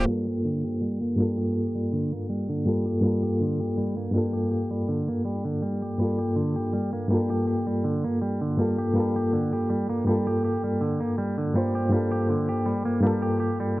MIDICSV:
0, 0, Header, 1, 3, 480
1, 0, Start_track
1, 0, Key_signature, -2, "minor"
1, 0, Tempo, 740741
1, 43, Time_signature, 4, 2, 24, 8
1, 8942, End_track
2, 0, Start_track
2, 0, Title_t, "Reed electric piano"
2, 0, Program_c, 0, 4
2, 0, Control_c, 0, 64, 127
2, 26, Note_on_c, 0, 43, 67
2, 39, Note_on_c, 0, 58, 60
2, 52, Control_c, 0, 64, 0
2, 52, Note_on_c, 0, 65, 66
2, 67, Note_on_c, 0, 69, 78
2, 180, Control_c, 0, 64, 127
2, 728, Note_off_c, 0, 43, 0
2, 734, Note_off_c, 0, 58, 0
2, 741, Note_off_c, 0, 65, 0
2, 748, Note_off_c, 0, 69, 0
2, 749, Note_on_c, 0, 43, 86
2, 762, Note_on_c, 0, 58, 76
2, 777, Note_on_c, 0, 65, 77
2, 791, Note_on_c, 0, 69, 93
2, 1690, Note_off_c, 0, 43, 0
2, 1696, Note_off_c, 0, 58, 0
2, 1703, Note_off_c, 0, 65, 0
2, 1710, Note_off_c, 0, 69, 0
2, 1719, Note_on_c, 0, 43, 73
2, 1724, Note_on_c, 0, 58, 65
2, 1733, Note_on_c, 0, 65, 70
2, 1739, Note_on_c, 0, 69, 84
2, 1934, Note_off_c, 0, 43, 0
2, 1937, Note_off_c, 0, 58, 0
2, 1941, Note_off_c, 0, 65, 0
2, 1944, Note_off_c, 0, 69, 0
2, 1949, Note_on_c, 0, 43, 64
2, 1962, Note_on_c, 0, 58, 58
2, 1976, Note_on_c, 0, 65, 62
2, 1990, Note_on_c, 0, 69, 71
2, 2649, Note_off_c, 0, 43, 0
2, 2656, Note_off_c, 0, 58, 0
2, 2663, Note_off_c, 0, 65, 0
2, 2666, Note_on_c, 0, 43, 74
2, 2670, Note_off_c, 0, 69, 0
2, 2680, Note_on_c, 0, 58, 68
2, 2694, Note_on_c, 0, 65, 68
2, 2706, Note_on_c, 0, 69, 80
2, 3848, Note_off_c, 0, 43, 0
2, 3855, Note_off_c, 0, 58, 0
2, 3862, Note_off_c, 0, 65, 0
2, 3868, Note_off_c, 0, 69, 0
2, 3871, Note_on_c, 0, 43, 68
2, 3884, Note_on_c, 0, 58, 65
2, 3897, Note_on_c, 0, 65, 67
2, 3912, Note_on_c, 0, 69, 75
2, 4570, Note_off_c, 0, 43, 0
2, 4577, Note_off_c, 0, 58, 0
2, 4583, Note_off_c, 0, 65, 0
2, 4588, Note_on_c, 0, 43, 81
2, 4591, Note_off_c, 0, 69, 0
2, 4603, Note_on_c, 0, 58, 79
2, 4616, Note_on_c, 0, 65, 79
2, 4629, Note_on_c, 0, 69, 88
2, 5529, Note_off_c, 0, 43, 0
2, 5536, Note_off_c, 0, 58, 0
2, 5543, Note_off_c, 0, 65, 0
2, 5549, Note_off_c, 0, 69, 0
2, 5558, Note_on_c, 0, 43, 74
2, 5564, Note_on_c, 0, 58, 68
2, 5572, Note_on_c, 0, 65, 70
2, 5580, Note_on_c, 0, 69, 84
2, 5774, Note_off_c, 0, 43, 0
2, 5777, Note_off_c, 0, 58, 0
2, 5781, Note_off_c, 0, 65, 0
2, 5785, Note_off_c, 0, 69, 0
2, 5788, Note_on_c, 0, 43, 68
2, 5801, Note_on_c, 0, 58, 61
2, 5815, Note_on_c, 0, 65, 61
2, 5829, Note_on_c, 0, 69, 73
2, 6489, Note_off_c, 0, 43, 0
2, 6496, Note_off_c, 0, 58, 0
2, 6502, Note_off_c, 0, 65, 0
2, 6509, Note_off_c, 0, 69, 0
2, 6510, Note_on_c, 0, 43, 78
2, 6525, Note_on_c, 0, 58, 67
2, 6538, Note_on_c, 0, 65, 73
2, 6549, Note_on_c, 0, 69, 82
2, 7454, Note_off_c, 0, 43, 0
2, 7462, Note_off_c, 0, 58, 0
2, 7468, Note_off_c, 0, 65, 0
2, 7474, Note_off_c, 0, 69, 0
2, 7480, Note_on_c, 0, 43, 78
2, 7487, Note_on_c, 0, 58, 70
2, 7493, Note_on_c, 0, 65, 71
2, 7500, Note_on_c, 0, 72, 85
2, 7695, Note_off_c, 0, 43, 0
2, 7698, Note_off_c, 0, 58, 0
2, 7701, Note_off_c, 0, 65, 0
2, 7705, Note_off_c, 0, 72, 0
2, 7709, Note_on_c, 0, 43, 69
2, 7723, Note_on_c, 0, 58, 62
2, 7738, Note_on_c, 0, 65, 65
2, 7750, Note_on_c, 0, 69, 81
2, 8409, Note_off_c, 0, 43, 0
2, 8416, Note_off_c, 0, 58, 0
2, 8424, Note_off_c, 0, 65, 0
2, 8430, Note_off_c, 0, 69, 0
2, 8430, Note_on_c, 0, 43, 86
2, 8442, Note_on_c, 0, 58, 82
2, 8456, Note_on_c, 0, 65, 77
2, 8468, Note_on_c, 0, 69, 93
2, 8942, Note_off_c, 0, 43, 0
2, 8942, Note_off_c, 0, 58, 0
2, 8942, Note_off_c, 0, 65, 0
2, 8942, Note_off_c, 0, 69, 0
2, 8942, End_track
3, 0, Start_track
3, 0, Title_t, "Clean electric guitar"
3, 0, Program_c, 1, 27
3, 50, Note_on_c, 1, 55, 64
3, 168, Note_off_c, 1, 55, 0
3, 175, Note_on_c, 1, 67, 79
3, 274, Note_off_c, 1, 67, 0
3, 288, Note_on_c, 1, 50, 68
3, 407, Note_off_c, 1, 50, 0
3, 413, Note_on_c, 1, 67, 62
3, 519, Note_off_c, 1, 67, 0
3, 526, Note_on_c, 1, 55, 65
3, 640, Note_off_c, 1, 55, 0
3, 655, Note_on_c, 1, 58, 66
3, 760, Note_off_c, 1, 58, 0
3, 767, Note_on_c, 1, 55, 64
3, 886, Note_off_c, 1, 55, 0
3, 893, Note_on_c, 1, 67, 86
3, 999, Note_off_c, 1, 67, 0
3, 1007, Note_on_c, 1, 67, 67
3, 1120, Note_off_c, 1, 67, 0
3, 1134, Note_on_c, 1, 55, 64
3, 1240, Note_off_c, 1, 55, 0
3, 1247, Note_on_c, 1, 50, 66
3, 1366, Note_off_c, 1, 50, 0
3, 1375, Note_on_c, 1, 58, 58
3, 1475, Note_off_c, 1, 58, 0
3, 1487, Note_on_c, 1, 55, 67
3, 1600, Note_off_c, 1, 55, 0
3, 1614, Note_on_c, 1, 50, 65
3, 1719, Note_off_c, 1, 50, 0
3, 1728, Note_on_c, 1, 55, 59
3, 1847, Note_off_c, 1, 55, 0
3, 1851, Note_on_c, 1, 67, 63
3, 1952, Note_off_c, 1, 67, 0
3, 1964, Note_on_c, 1, 55, 64
3, 2085, Note_off_c, 1, 55, 0
3, 2091, Note_on_c, 1, 67, 79
3, 2193, Note_off_c, 1, 67, 0
3, 2204, Note_on_c, 1, 50, 69
3, 2325, Note_off_c, 1, 50, 0
3, 2332, Note_on_c, 1, 67, 57
3, 2439, Note_off_c, 1, 67, 0
3, 2445, Note_on_c, 1, 55, 66
3, 2559, Note_off_c, 1, 55, 0
3, 2571, Note_on_c, 1, 58, 66
3, 2678, Note_off_c, 1, 58, 0
3, 2682, Note_on_c, 1, 55, 62
3, 2804, Note_off_c, 1, 55, 0
3, 2807, Note_on_c, 1, 67, 84
3, 2916, Note_off_c, 1, 67, 0
3, 2923, Note_on_c, 1, 67, 65
3, 3038, Note_off_c, 1, 67, 0
3, 3049, Note_on_c, 1, 55, 61
3, 3157, Note_off_c, 1, 55, 0
3, 3164, Note_on_c, 1, 50, 61
3, 3285, Note_off_c, 1, 50, 0
3, 3292, Note_on_c, 1, 58, 60
3, 3393, Note_off_c, 1, 58, 0
3, 3403, Note_on_c, 1, 55, 70
3, 3518, Note_off_c, 1, 55, 0
3, 3530, Note_on_c, 1, 50, 60
3, 3637, Note_off_c, 1, 50, 0
3, 3643, Note_on_c, 1, 55, 65
3, 3764, Note_off_c, 1, 55, 0
3, 3772, Note_on_c, 1, 67, 60
3, 3873, Note_off_c, 1, 67, 0
3, 3884, Note_on_c, 1, 55, 65
3, 4005, Note_off_c, 1, 55, 0
3, 4007, Note_on_c, 1, 67, 77
3, 4111, Note_off_c, 1, 67, 0
3, 4120, Note_on_c, 1, 50, 68
3, 4243, Note_off_c, 1, 50, 0
3, 4249, Note_on_c, 1, 67, 60
3, 4357, Note_off_c, 1, 67, 0
3, 4362, Note_on_c, 1, 55, 68
3, 4477, Note_off_c, 1, 55, 0
3, 4489, Note_on_c, 1, 58, 67
3, 4597, Note_off_c, 1, 58, 0
3, 4602, Note_on_c, 1, 55, 62
3, 4724, Note_off_c, 1, 55, 0
3, 4730, Note_on_c, 1, 67, 90
3, 4834, Note_off_c, 1, 67, 0
3, 4842, Note_on_c, 1, 67, 71
3, 4957, Note_off_c, 1, 67, 0
3, 4968, Note_on_c, 1, 55, 64
3, 5077, Note_off_c, 1, 55, 0
3, 5082, Note_on_c, 1, 50, 69
3, 5204, Note_off_c, 1, 50, 0
3, 5210, Note_on_c, 1, 58, 62
3, 5312, Note_off_c, 1, 58, 0
3, 5323, Note_on_c, 1, 55, 66
3, 5438, Note_off_c, 1, 55, 0
3, 5451, Note_on_c, 1, 50, 62
3, 5558, Note_off_c, 1, 50, 0
3, 5564, Note_on_c, 1, 55, 60
3, 5685, Note_off_c, 1, 55, 0
3, 5692, Note_on_c, 1, 67, 64
3, 5793, Note_off_c, 1, 67, 0
3, 5806, Note_on_c, 1, 55, 67
3, 5926, Note_off_c, 1, 55, 0
3, 5935, Note_on_c, 1, 67, 81
3, 6034, Note_off_c, 1, 67, 0
3, 6046, Note_on_c, 1, 50, 67
3, 6166, Note_off_c, 1, 50, 0
3, 6174, Note_on_c, 1, 67, 59
3, 6279, Note_off_c, 1, 67, 0
3, 6284, Note_on_c, 1, 55, 66
3, 6398, Note_off_c, 1, 55, 0
3, 6411, Note_on_c, 1, 58, 70
3, 6518, Note_off_c, 1, 58, 0
3, 6525, Note_on_c, 1, 55, 62
3, 6645, Note_off_c, 1, 55, 0
3, 6654, Note_on_c, 1, 67, 90
3, 6759, Note_off_c, 1, 67, 0
3, 6768, Note_on_c, 1, 67, 65
3, 6880, Note_off_c, 1, 67, 0
3, 6893, Note_on_c, 1, 55, 61
3, 6999, Note_off_c, 1, 55, 0
3, 7004, Note_on_c, 1, 50, 65
3, 7125, Note_off_c, 1, 50, 0
3, 7130, Note_on_c, 1, 58, 60
3, 7232, Note_off_c, 1, 58, 0
3, 7245, Note_on_c, 1, 55, 69
3, 7359, Note_off_c, 1, 55, 0
3, 7373, Note_on_c, 1, 50, 65
3, 7479, Note_off_c, 1, 50, 0
3, 7487, Note_on_c, 1, 55, 61
3, 7606, Note_off_c, 1, 55, 0
3, 7614, Note_on_c, 1, 67, 62
3, 7714, Note_off_c, 1, 67, 0
3, 7725, Note_on_c, 1, 55, 68
3, 7845, Note_off_c, 1, 55, 0
3, 7850, Note_on_c, 1, 67, 83
3, 7952, Note_off_c, 1, 67, 0
3, 7965, Note_on_c, 1, 50, 66
3, 8085, Note_off_c, 1, 50, 0
3, 8092, Note_on_c, 1, 67, 64
3, 8198, Note_off_c, 1, 67, 0
3, 8202, Note_on_c, 1, 55, 64
3, 8318, Note_off_c, 1, 55, 0
3, 8329, Note_on_c, 1, 58, 69
3, 8437, Note_off_c, 1, 58, 0
3, 8441, Note_on_c, 1, 55, 63
3, 8563, Note_off_c, 1, 55, 0
3, 8568, Note_on_c, 1, 67, 87
3, 8674, Note_off_c, 1, 67, 0
3, 8682, Note_on_c, 1, 67, 67
3, 8798, Note_off_c, 1, 67, 0
3, 8813, Note_on_c, 1, 55, 67
3, 8919, Note_off_c, 1, 55, 0
3, 8942, End_track
0, 0, End_of_file